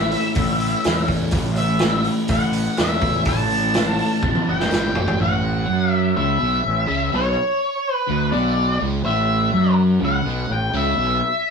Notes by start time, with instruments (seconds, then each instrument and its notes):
Already playing: fingered electric bass A1, distorted electric guitar A2 E3 A3, lead electric guitar E5
0.11 open hi-hat
0.35 fingered electric bass A1, distorted electric guitar A2 E3 A3, kick, open hi-hat
0.60 open hi-hat
0.84 fingered electric bass E2, snare, open hi-hat, tambourine
1.08 kick, open hi-hat
1.31 fingered electric bass A1, distorted electric guitar A2 E3 A3, kick, open hi-hat
1.56 lead electric guitar E5, open hi-hat
1.79 snare, open hi-hat, tambourine
2.04 open hi-hat
2.28 fingered electric bass A1, distorted electric guitar A2 E3, lead electric guitar F#5, kick, open hi-hat
2.33 distorted electric guitar A3
2.53 open hi-hat
2.77 fingered electric bass E2, lead electric guitar E5, snare, open hi-hat, tambourine
3.01 kick, open hi-hat
3.25 fingered electric bass A1, distorted electric guitar A2 E3 A3, lead electric guitar A5, kick, open hi-hat
3.50 open hi-hat
3.74 snare, open hi-hat, tambourine
3.99 open hi-hat
4.22 fingered electric bass A1, distorted electric guitar A2 E3 A3, kick, high tom
4.35 high tom
4.48 fingered electric bass F#1, lead electric guitar G5
4.60 snare
4.71 fingered electric bass G1, snare, tambourine
4.95 fingered electric bass A1, floor tom
5.08 floor tom
5.18 fingered electric bass A1, distorted electric guitar A2, lead electric guitar F#5
5.68 fingered electric bass F#2, distorted electric guitar F#3
5.91 lead electric guitar E5
6.17 fingered electric bass C#2, distorted electric guitar C#3, lead electric guitar E5
6.39 fingered electric bass B1, distorted electric guitar B2
6.64 fingered electric bass A1, distorted electric guitar A2
6.87 fingered electric bass C#2, distorted electric guitar C#3
7.12 fingered electric bass B1, distorted electric guitar B2, lead electric guitar C#5
7.94 lead electric guitar B4
8.08 fingered electric bass D2, distorted electric guitar D3
8.32 fingered electric bass B1, distorted electric guitar B2, lead electric guitar D5
8.79 fingered electric bass C#2, distorted electric guitar C#3
9.04 fingered electric bass A1, distorted electric guitar A2, lead electric guitar E5
9.52 fingered electric bass F#2, distorted electric guitar F#3
9.99 fingered electric bass C#2, distorted electric guitar C#3
10.05 lead electric guitar F#5
10.25 fingered electric bass B1, distorted electric guitar B2
10.48 fingered electric bass A1, distorted electric guitar A2
10.53 lead electric guitar G5
10.73 fingered electric bass C#2, distorted electric guitar C#3, lead electric guitar E5
10.97 fingered electric bass B1, distorted electric guitar B2